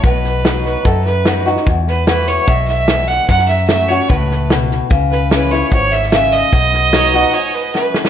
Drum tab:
HH |----p-------p---|----p-------p---|----p-------p---|----p-------p---|
SD |o-o-o-o-o-o-o-oo|o-o-o-o-o-o-o-o-|ooo-o-o-o-o-o-o-|o-o-o-o-o-ooo-o-|
BD |o-------o-------|o-------o-------|o-------o-------|o-------o-------|

HH |----p-----------|
SD |o-o-o-o-----o-oo|
BD |o---------------|